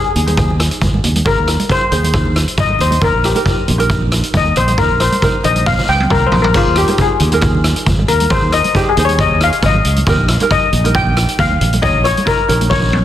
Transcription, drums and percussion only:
0.16 closed hi-hat, low conga
0.27 closed hi-hat, high conga
0.37 kick, cross-stick, closed hi-hat
0.50 low conga
0.60 cross-stick, closed hi-hat
0.71 closed hi-hat
0.82 kick, closed hi-hat, high conga
0.94 high conga
1.04 closed hi-hat, low conga
1.16 closed hi-hat, high conga
1.26 kick, closed hi-hat
1.48 cross-stick, closed hi-hat
1.60 closed hi-hat, high conga
1.69 kick, closed hi-hat
1.92 closed hi-hat, low conga
2.03 closed hi-hat, high conga
2.14 kick, cross-stick, closed hi-hat
2.25 low conga
2.36 cross-stick, closed hi-hat
2.48 closed hi-hat
2.57 kick, closed hi-hat, high conga
2.69 high conga
2.79 closed hi-hat, low conga
2.91 closed hi-hat, high conga
3.02 kick
3.24 cross-stick, closed hi-hat
3.35 closed hi-hat, high conga
3.46 kick, closed hi-hat
3.68 closed hi-hat, low conga
3.80 closed hi-hat, high conga
3.90 kick, cross-stick, closed hi-hat
4.01 low conga
4.12 cross-stick, closed hi-hat
4.23 closed hi-hat
4.34 kick, closed hi-hat, high conga
4.46 high conga
4.56 closed hi-hat, low conga
4.68 closed hi-hat, high conga
4.78 kick, closed hi-hat
5.00 cross-stick, closed hi-hat
5.12 closed hi-hat, high conga
5.22 kick, closed hi-hat
5.44 closed hi-hat, low conga
5.56 closed hi-hat, high conga
5.66 kick, snare
5.78 snare, low conga
6.00 high tom
6.10 kick, mid tom, high conga
6.22 high conga
6.32 floor tom, low conga
6.44 floor tom, high conga
6.54 kick, closed hi-hat, splash
6.76 cross-stick, closed hi-hat
6.88 closed hi-hat, high conga
6.98 kick, closed hi-hat
7.20 closed hi-hat, low conga
7.32 closed hi-hat, high conga
7.41 kick, cross-stick, closed hi-hat
7.55 low conga
7.64 cross-stick, closed hi-hat
7.76 closed hi-hat
7.86 kick, closed hi-hat, high conga
7.99 high conga
8.08 closed hi-hat, low conga
8.20 closed hi-hat, high conga
8.30 kick, closed hi-hat
8.52 cross-stick, closed hi-hat
8.64 closed hi-hat, high conga
8.75 kick, closed hi-hat
8.97 closed hi-hat, low conga
9.09 closed hi-hat, high conga
9.19 kick, cross-stick, closed hi-hat
9.31 low conga
9.41 cross-stick, closed hi-hat
9.52 closed hi-hat
9.63 kick, closed hi-hat, high conga
9.75 high conga
9.85 closed hi-hat
9.96 closed hi-hat, high conga
10.07 kick, closed hi-hat
10.28 cross-stick, closed hi-hat
10.40 closed hi-hat, high conga
10.50 kick, closed hi-hat
10.73 closed hi-hat, low conga
10.85 closed hi-hat, high conga
10.95 kick, cross-stick, closed hi-hat
11.07 low conga
11.17 cross-stick, closed hi-hat
11.28 closed hi-hat
11.39 kick, closed hi-hat, high conga
11.51 high conga
11.61 closed hi-hat, low conga
11.73 closed hi-hat, high conga
11.83 kick, closed hi-hat
12.05 cross-stick, closed hi-hat
12.17 closed hi-hat, high conga
12.27 kick, closed hi-hat
12.49 closed hi-hat, low conga
12.61 closed hi-hat, high conga
12.71 kick, snare
12.82 low conga
12.93 high tom

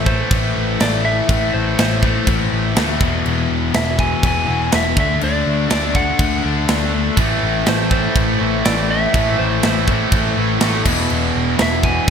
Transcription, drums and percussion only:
0.06 kick
0.31 kick, crash
0.80 snare, crash
1.29 kick, crash
1.78 snare, crash
2.03 kick
2.27 kick, crash
2.76 snare, crash
3.01 kick
3.26 crash
3.74 snare, crash
3.99 kick
4.23 kick, crash
4.72 snare, crash
4.97 kick
5.21 crash
5.70 snare, crash
5.95 kick
6.19 kick, crash
6.68 snare, crash
7.17 kick, crash
7.66 snare, crash
7.91 kick
8.16 kick, crash
8.65 snare, crash
9.14 kick, crash
9.63 snare, crash
9.88 kick
10.12 kick, crash
10.61 snare, crash
10.86 kick, crash
11.10 crash
11.59 snare, crash
11.83 kick

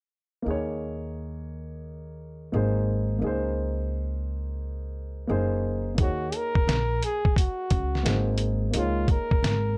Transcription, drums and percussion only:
5.98 kick, closed hi-hat
6.32 closed hi-hat
6.55 kick
6.69 snare, closed hi-hat
7.03 closed hi-hat
7.25 kick
7.36 kick, closed hi-hat
7.70 kick, closed hi-hat
7.95 snare
8.06 snare, closed hi-hat
8.38 closed hi-hat
8.74 closed hi-hat
9.08 kick, closed hi-hat
9.31 kick
9.44 snare, closed hi-hat

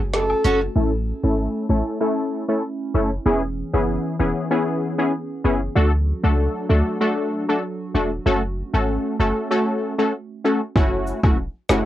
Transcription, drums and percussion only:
0.13 snare, closed hi-hat
0.30 high woodblock
0.44 closed hi-hat, cabasa
10.76 kick, high woodblock
11.07 cabasa
11.23 kick, high woodblock
11.69 snare, cabasa, high woodblock

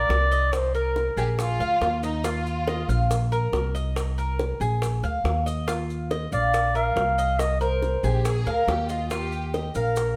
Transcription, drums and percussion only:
0.10 high bongo, low bongo, maracas
0.32 maracas
0.53 high bongo, maracas
0.75 maracas
0.96 high bongo, maracas
1.17 high bongo, maracas
1.39 high bongo, maracas
1.60 high bongo, maracas
1.82 high bongo, low bongo, maracas
2.03 high bongo, maracas
2.24 high bongo, maracas
2.46 maracas
2.67 high bongo, maracas
2.89 maracas
3.11 high bongo, maracas
3.32 maracas
3.53 high bongo, low bongo, maracas
3.75 maracas
3.96 high bongo, maracas
4.19 maracas
4.39 high bongo, maracas
4.61 high bongo, maracas
4.82 high bongo, maracas
5.04 high bongo, maracas
5.25 high bongo, low bongo, maracas
5.47 high bongo, maracas
5.68 high bongo, maracas
5.90 maracas
6.11 high bongo, maracas
6.32 maracas
6.54 high bongo, maracas
6.75 maracas
6.97 high bongo, low bongo, maracas
7.18 maracas
7.39 high bongo, maracas
7.61 maracas
7.82 high bongo, maracas
8.04 high bongo, maracas
8.25 high bongo, maracas
8.46 high bongo, maracas
8.68 high bongo, low bongo, maracas
8.89 high bongo, maracas
9.11 high bongo, maracas
9.32 maracas
9.54 high bongo, maracas
9.75 maracas
9.96 high bongo, maracas

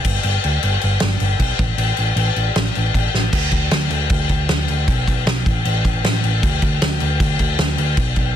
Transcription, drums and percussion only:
0.05 kick, crash
0.23 crash
0.44 crash
0.63 crash
0.81 crash
1.00 snare, crash
1.20 crash
1.40 kick, crash
1.59 kick, crash
1.78 crash
1.97 crash
2.17 crash
2.36 crash
2.56 snare, crash
2.75 crash
2.94 kick, crash
3.14 snare
3.33 kick, crash
3.51 kick, crash
3.71 snare, crash
3.90 crash
4.10 kick, crash
4.29 kick, crash
4.49 snare, crash
4.68 crash
4.88 kick, crash
5.08 kick, crash
5.27 snare, crash
5.46 kick, crash
5.65 crash
5.85 kick, crash
6.04 snare, crash
6.24 crash
6.43 kick, crash
6.62 kick, crash
6.82 snare, crash
7.00 crash
7.20 kick, crash
7.39 kick, crash
7.59 snare, crash
7.78 crash
7.97 kick, crash
8.16 kick, crash

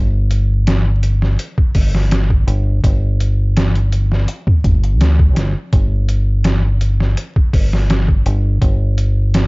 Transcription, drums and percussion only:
0.31 closed hi-hat
0.67 snare, closed hi-hat
1.03 closed hi-hat
1.22 snare
1.39 closed hi-hat
1.58 kick
1.75 kick, open hi-hat
1.95 snare
2.11 snare, closed hi-hat
2.30 kick
2.48 closed hi-hat
2.84 kick, closed hi-hat
3.20 closed hi-hat
3.57 snare, closed hi-hat
3.75 closed hi-hat
3.92 closed hi-hat
4.12 snare
4.28 closed hi-hat
4.47 kick
4.64 kick, closed hi-hat
4.84 closed hi-hat
5.01 snare, closed hi-hat
5.19 kick
5.36 snare, closed hi-hat
5.73 kick, closed hi-hat
6.09 closed hi-hat
6.44 snare, closed hi-hat
6.81 closed hi-hat
7.00 snare
7.17 closed hi-hat
7.36 kick
7.53 kick, open hi-hat
7.73 snare
7.90 snare, closed hi-hat
8.08 kick
8.26 closed hi-hat
8.62 kick, closed hi-hat
8.98 closed hi-hat
9.34 snare, closed hi-hat

